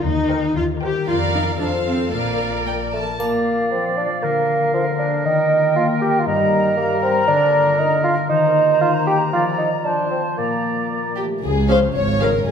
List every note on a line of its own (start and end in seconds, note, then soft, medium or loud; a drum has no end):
0.00 0.21 A#3 soft
0.00 1.62 A#4 soft
0.04 0.45 D#2 medium
0.04 1.10 D#3 soft
0.04 0.55 D#4 medium
0.22 0.72 A#3 soft
0.30 0.49 A#4 soft
0.30 0.50 C5 soft
0.30 0.50 G5 soft
0.39 1.10 G4 soft
0.56 0.97 D#2 medium
0.56 0.64 F4 medium
0.56 1.10 C5 soft
0.73 1.62 A#3 soft
0.81 1.07 G4 medium
0.81 1.01 A#4 soft
0.81 1.01 C5 soft
0.81 1.01 G5 soft
0.91 1.10 D#4 soft
1.07 1.57 F2 soft
1.07 1.59 F3 soft
1.07 1.15 F4 medium
1.07 1.56 A#4 soft
1.07 1.57 D5 soft
1.07 1.57 F5 soft
1.25 1.41 F4 soft
1.33 1.41 D#4 medium
1.42 1.77 F4 soft
1.42 1.63 D5 soft
1.60 2.13 F2 soft
1.60 3.01 F3 soft
1.60 1.68 D4 medium
1.60 2.14 A4 soft
1.60 2.13 C5 soft
1.60 2.12 F5 soft
1.78 1.95 F4 soft
1.87 2.13 C4 soft
1.96 2.48 F4 soft
1.96 2.16 C5 soft
2.13 2.99 A#1 soft
2.13 3.19 A#2 soft
2.13 2.66 A#3 soft
2.13 2.99 A#4 soft
2.13 2.98 D5 soft
2.13 2.60 F5 soft
2.31 2.83 A#3 soft
2.49 3.54 F4 soft
2.66 3.71 D5 soft
2.66 2.75 G5 soft
2.84 3.36 A#3 soft
2.93 3.05 A3 soft
2.93 3.19 A5 soft
3.02 4.05 F3 soft
3.20 4.25 A#2 soft
3.20 3.70 A#3 medium
3.20 3.63 A#3 soft
3.20 4.25 D5 soft
3.20 5.21 F5 soft
3.20 triangle soft
3.55 4.55 F4 soft
3.71 4.14 F3 soft
3.71 3.97 C4 medium
3.71 5.27 D5 soft
3.89 4.38 A#3 soft
3.98 4.09 D4 medium
4.06 5.27 F3 soft
4.22 4.65 D3 medium
4.22 5.27 D3 soft
4.22 4.73 A#3 medium
4.22 6.26 A#4 soft
4.39 4.89 A#3 soft
4.57 5.27 F4 soft
4.74 5.16 D3 medium
4.74 4.85 F3 medium
4.74 5.74 A#4 soft
4.90 5.41 A#3 soft
4.99 5.24 D4 medium
5.25 5.67 D#3 medium
5.25 6.28 D#3 medium
5.25 5.75 D#4 medium
5.25 6.26 G5 soft
5.42 5.91 A#3 soft
5.59 6.59 G4 soft
5.75 6.17 A#3 medium
5.75 5.87 F4 medium
5.75 6.76 A#4 soft
5.92 6.42 A#3 soft
6.02 6.21 G4 medium
6.09 7.30 D#4 soft
6.19 6.28 F4 medium
6.26 7.30 G2 medium
6.26 6.69 G3 medium
6.26 6.77 D#4 medium
6.26 8.25 A#4 medium
6.26 7.99 A#5 medium
6.43 6.93 A#3 soft
6.61 7.30 G4 soft
6.77 7.19 G3 medium
6.77 7.02 A#3 medium
6.77 7.77 A#4 medium
6.94 7.43 A#3 soft
7.03 7.27 C4 medium
7.11 7.30 G3 soft
7.28 8.31 D3 medium
7.28 7.70 D3 medium
7.28 7.80 D4 medium
7.44 7.94 A#3 soft
7.61 8.31 F4 soft
7.78 8.20 D3 medium
7.78 8.03 D#4 medium
7.78 9.87 A#4 medium
7.95 8.45 A#3 soft
8.04 8.15 F4 medium
8.12 8.31 D4 soft
8.29 8.72 D#3 medium
8.29 9.34 D#3 medium
8.29 8.80 D#4 medium
8.29 9.31 C5 medium
8.29 9.81 A#5 medium
8.47 8.97 A#3 soft
8.64 9.34 G4 soft
8.79 9.23 D#3 medium
8.79 8.93 F4 medium
8.79 9.35 C5 soft
8.98 9.87 A#3 soft
9.07 9.19 G4 medium
9.16 9.35 D#4 soft
9.32 9.76 F3 medium
9.32 9.84 F3 medium
9.32 9.45 F4 medium
9.32 9.66 D5 soft
9.50 9.67 F4 soft
9.58 9.70 D#4 medium
9.68 10.02 F4 soft
9.68 9.87 D5 soft
9.84 10.29 F3 soft
9.84 11.24 F3 soft
9.84 10.10 D4 medium
9.84 10.40 C5 soft
9.84 10.37 A5 soft
10.03 10.19 F4 soft
10.10 10.22 C4 medium
10.20 10.72 F4 soft
10.20 10.40 C5 soft
10.37 11.46 A#2 soft
10.37 10.89 A#3 medium
10.37 10.82 A#3 soft
10.37 11.17 D5 soft
10.37 11.16 A#5 soft
10.55 11.07 A#3 soft
10.73 12.33 F4 soft
10.90 11.02 A#3 soft
10.90 11.45 D5 soft
11.09 11.46 A#3 soft
11.17 11.44 A3 soft
11.17 11.41 G4 medium
11.17 11.25 G4 soft
11.17 11.23 G4 soft
11.25 12.51 F3 soft
11.43 11.86 C#2 medium
11.43 11.87 C#2 medium
11.43 12.49 C#3 medium
11.43 11.49 G#4 soft
11.43 11.68 G#4 medium
11.43 11.69 G#4 medium
11.56 12.51 G#3 soft
11.69 11.77 C#4 soft
11.69 11.79 C#4 soft
11.69 11.78 F4 soft
11.69 11.78 G#4 soft
11.69 11.75 C5 medium
11.69 11.94 C5 medium
11.69 11.78 C5 medium
11.69 12.20 C#5 soft
11.69 11.77 F5 soft
11.69 11.79 F5 soft
11.82 12.07 F5 soft
11.95 12.38 G#1 medium
11.95 12.39 G#1 medium
11.95 12.39 G#2 medium
11.95 12.01 C#5 medium
11.95 12.20 C#5 medium
11.95 12.21 C#5 medium
11.95 12.51 C#6 soft
12.08 12.51 F5 soft
12.21 12.30 C#4 soft
12.21 12.31 C#4 soft
12.21 12.30 C#4 soft
12.21 12.30 F4 soft
12.21 12.30 G#4 soft
12.21 12.27 A#4 medium
12.21 12.45 A#4 medium
12.21 12.48 A#4 medium
12.21 12.51 C#5 soft
12.21 12.29 F5 soft
12.21 12.31 F5 soft
12.34 12.51 F4 soft
12.47 12.51 F1 medium
12.47 12.51 F2 medium
12.47 12.51 G#4 medium
12.47 12.51 G#4 soft
12.47 12.51 G#4 medium